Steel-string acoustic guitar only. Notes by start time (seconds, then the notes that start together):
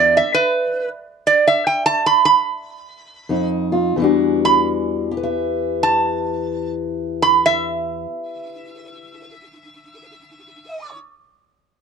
Already playing: E2 D4 E4
3.29 F2 D#4
3.72 F4
3.96 E2 E3 G3
4.02 D4 F#4
5.11 G4
5.17 B4
5.23 E5